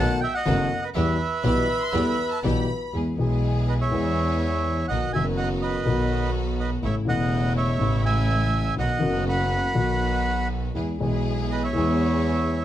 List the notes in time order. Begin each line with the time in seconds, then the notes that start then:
Already playing: B1 B2 D#3 A3 B3 D#4 F#4 A5
0.00 B1 A4 F#5
0.21 E5 G5
0.34 D#5 F#5
0.45 F#1 F#2 D#3 A3 B3 D#4 F#4 A4
0.82 B4 D#5
0.94 E2 E3 G3 B3 E4 G4 B4 E5
1.43 B1 B2 E3 G3 B3 E4 G4 B4 B5
1.82 C6
1.93 E2 E3 G3 B3 E4 G4 A4 B5
2.07 B4
2.31 A5
2.43 B1 B2 E3 G3 B3 E4 G4 B5
2.93 E2 E3 G#3 B3 E4 G#4
3.16 B1 B2 E3 G#3 B3 E4 G#4
3.21 G#4
3.69 B4 D#5
3.81 C#5 E5
3.89 E2 E3 G#3 B3 E4 G#4
4.88 B1 B2 D#3 F#3 B3 D#4 F#4 D#5 F#5
5.13 F#1 F#2 D#3 F#3 B3 D#4 F#4 E5 G#5
5.17 F#4
5.37 D#5 F#5
5.62 B4 D#5
5.85 B1 B2 D#3 F#3 B3 D#4 F#4
6.60 B4 D#5
6.82 A1 A2 C#3 E3 A3 C#4 E4 C#5 E5
7.05 E1 E2 C#3 E3 A3 C#4 E4 D#5 F#5
7.09 E4
7.57 C#5 E5
7.77 A1 A2 C#3 E3 A3 C#4 E4
7.82 E4
8.06 E5 G#5
8.76 B1 B2 D#3 F#3 B3 D#4 F#4 D#5 F#5
8.98 F#1 F#2 D#3 F#3 B3 D#4 F#4
9.03 F#1 F#4
9.29 F#5 B5
9.73 B1 B2 D#3 F#3 B3 D#4 F#4
10.74 E2 E3 G#3 B3 E4 G#4
10.99 B1 B2 E3 G#3 B3 E4 G#4
11.03 G#4
11.51 B4 D#5
11.63 C#5 E5
11.73 E2 E3 G#3 B3 E4 G#4